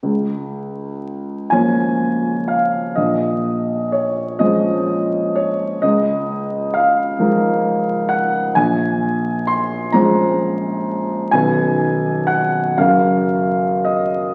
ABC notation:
X:1
M:6/8
L:1/8
Q:3/8=42
K:Db
V:1 name="Grand piano"
z3 a2 f | e2 d e2 d | e2 f3 g | a2 c' b3 |
a2 g f2 e |]
V:2 name="Grand piano" clef=bass
D,,3 [F,B,Dd]3 | B,,,3 [F,A,Dc]3 | D,,3 [F,A,EB]3 | B,,,3 [F,A,Dc]3 |
[_C,,E,G,D_c]3 [G,,D,G,DB]3 |]